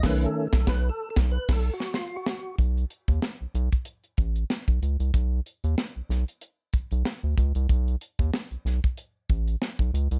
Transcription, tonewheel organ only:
0.04 D#3 A3 C#4 B4
0.26 A4
0.47 A4
0.68 B4
0.89 A4
1.10 A4
1.32 B4
1.52 A4
1.74 F#4
1.95 F4
2.16 F#4

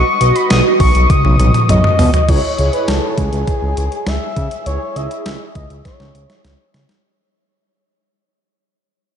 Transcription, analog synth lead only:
Already playing: C#6
0.35 B5
0.50 D#6
0.80 C#6
1.10 D#6
1.70 D#5
2.29 C#5
2.73 B4
2.88 A4
3.18 G#4
4.07 E5
4.67 C#5
4.96 E5
5.26 E5
5.55 D#5
5.85 C#5

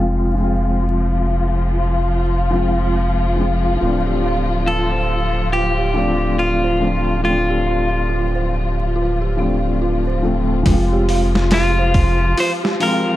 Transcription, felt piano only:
Already playing: F3 G#3 C4
0.00 F4
0.34 F3 G#3
0.41 C4 F4
2.51 F3 G#3 C4
2.55 F4
3.36 F3 G#3 C4
3.41 F4
3.76 F3 A3
3.83 C4 D4
5.94 F3 A3 C4
5.98 D4
6.80 F3 A3 C4
6.84 D4
7.20 F3 A3
7.26 C4 D4
9.37 F3 A3 C4
9.41 D4
10.22 F3 A3 C4
10.63 F3 G#3
10.70 C4 F4
12.80 F3 G#3 C4
12.84 F4

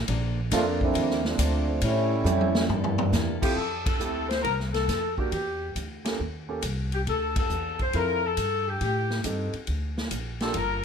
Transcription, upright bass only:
0.08 A#1
0.52 F2
0.95 D#2
1.39 D2
1.82 A2
2.24 F2
2.69 G2
3.12 E2
3.56 F2
3.99 D2
4.44 C2
4.88 F2
5.32 E2
5.76 D2
6.20 D#2
6.63 C2
7.07 D2
7.50 E2
7.94 F2
8.37 G2
8.81 A2
9.24 G2
9.53 muted upright bass stroke
9.68 D2
10.11 A#1
10.55 G1

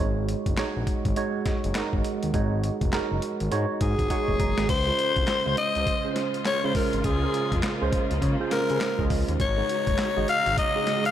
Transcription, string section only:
4.69 F4
7.04 A#3
9.40 C#3 G#3 D#4 F#4

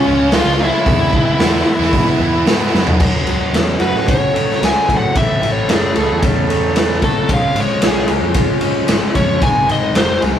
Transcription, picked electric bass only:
0.07 C#2
0.45 C#2
0.86 E2
1.38 E2
1.79 E2
2.19 E2
2.46 G#2
2.74 F#2
3.00 F#2
3.24 C#2
3.52 E2
3.80 F#2
3.94 A2
4.62 C#2
4.89 A2
5.16 A1
5.43 A1
5.70 F#1
5.97 C#2
6.10 E2
7.29 C#2
7.55 G#1
7.82 B1
8.09 C#2
8.22 F2
8.89 G#1
9.16 F2
9.41 G#1
9.68 G#1
9.94 F1
10.22 C2
10.36 D#2

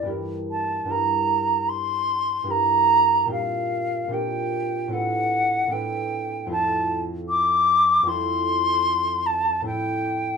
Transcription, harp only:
Already playing: F#4 A4
0.03 G2 D4 E4
0.07 G4 A#4
0.85 G2 D4 E4
0.89 G4 A#4
2.44 G2 D4 E4
2.48 G4 A#4
3.25 A#2 C4 D4
3.30 G4 A#4
4.08 A#2 C4 D4
4.12 G4 A#4
4.88 A2 C4 D4
4.92 A4 B4
5.67 A2 C4 D4
5.71 A4 B4
6.46 F2 C4 E4
6.51 A4 C5
8.03 F2 C4 E4
8.07 A4 C5
9.62 A2 C4 E4 A4
9.68 C5

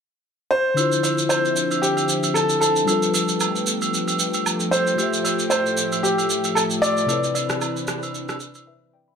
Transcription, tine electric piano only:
0.74 D3 D4 E4
0.80 F4 C5
2.85 G3 D4 F4
2.90 A4 B4
4.95 A3 F4 G4
5.01 C5 E5
7.06 C3 C4 E4
7.11 B4 C#5
7.20 D5
8.67 B4 E5
8.93 D5 G5
9.08 E5 B5

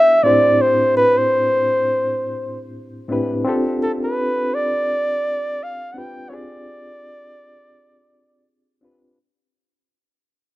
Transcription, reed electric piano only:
0.23 A2 C4 D4 E4 G4 C5
3.08 A2 C4 D4 E4 G4
3.12 B4
3.45 C4 D4 F4 G4
3.49 A4
5.94 C4 D4 F4 G4 B4
6.30 C4 D4 F4 G4 G#4
8.81 C4 D4 F4 G4 B4

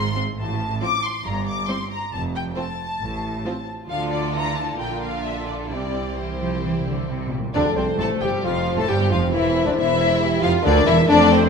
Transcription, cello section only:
Already playing: G#2
0.37 A2
1.24 G2
2.12 F2
3.01 A2
3.89 D3
4.79 A#2
5.70 C3
6.16 E3
6.40 F3
6.62 E3
6.86 D3
7.09 C3
7.32 A#2
7.55 D2
7.76 C2
7.98 A2
8.21 G2
8.44 F2
8.77 A2
8.89 G2
9.11 F2
9.33 E2
9.66 D2
9.78 E2
10.43 F2
10.65 D2
10.87 E2
11.09 F2

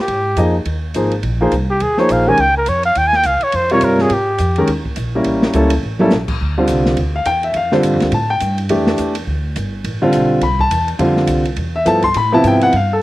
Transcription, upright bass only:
0.08 G#2
0.36 F2
0.66 D#2
0.94 G#1
1.23 A#1
1.52 C2
1.81 D#2
2.10 A#1
2.39 C#2
2.68 F2
2.96 D#2
3.25 C#2
3.42 muted upright bass stroke
3.53 F2
3.82 G2
4.10 G#2
4.39 F2
4.68 D#2
4.97 A#1
5.25 A1
5.54 C#2
5.83 A1
6.12 A#1
6.41 D2
6.69 C2
6.97 D2
7.26 E2
7.55 F2
7.83 G2
7.93 F2
8.03 D2
8.12 A2
8.42 G2
8.70 F2
8.99 E2
9.27 D2
9.56 G1
9.84 A1
10.13 B1
10.42 C2
10.70 E2
10.99 F2
11.28 C2
11.57 E2
11.86 G2
12.16 A2
12.44 G#2
12.73 G2

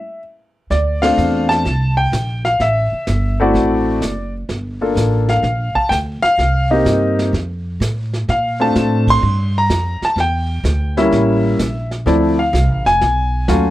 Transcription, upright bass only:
0.70 D2
1.18 E2
1.65 C2
2.12 A#1
2.60 A1
2.92 muted upright bass stroke
3.07 G1
3.54 A1
4.01 F#1
4.49 G1
4.95 A1
5.43 A#1
5.75 muted upright bass stroke
5.90 D2
6.22 muted upright bass stroke
6.38 C2
6.85 G2
7.33 F2
7.80 A2
8.28 A#2
8.75 A2
9.23 G2
9.69 F2
10.02 muted upright bass stroke
10.16 E2
10.64 D2
11.11 A1
11.59 A#1
12.06 D2
12.53 C2
12.69 A1
12.85 F1
13.02 B1
13.49 D#2

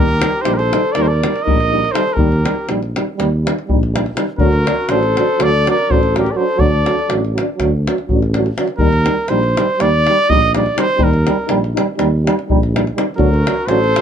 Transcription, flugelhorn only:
Already playing: G4
0.44 G4
0.54 G4
0.59 A4
0.95 A#4
1.06 A4
1.11 A#4
1.43 A#4
1.95 A4
2.16 G4
4.41 F#4
4.92 A4
5.44 A4
5.70 A#4
5.94 A4
6.19 G4
6.33 A#4
6.41 A4
6.62 A4
13.16 F#4
13.71 A4

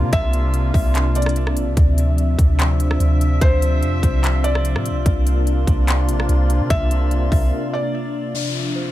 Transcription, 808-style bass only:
0.02 C3
0.13 C2
0.74 C2
1.56 A#1
1.67 C2
1.77 D2
2.39 D2
3.00 D2
3.42 D2
3.82 F2
4.03 C2
4.75 A2
4.91 C2
5.06 C2
5.67 C2
6.08 A#1
6.29 C2
6.60 C3
6.70 C2
7.32 C2

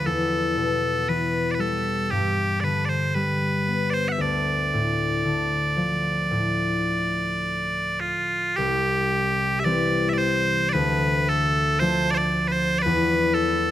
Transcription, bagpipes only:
0.06 A4
1.09 B4
1.51 B4 D5
1.60 A4
2.11 G4
2.60 B4 D5
2.85 C5 D5
3.15 B4
3.90 C5 D5
4.08 E5 F#5
4.21 D5
8.00 F4
8.56 G4
9.60 E5
9.64 D5
10.09 E5
10.13 D5
10.18 C5
10.69 B4 D5
11.29 A4
11.79 C5
12.11 C5 D5
12.16 D5
12.48 B4
12.52 C5
12.79 B4 D5
13.34 A4

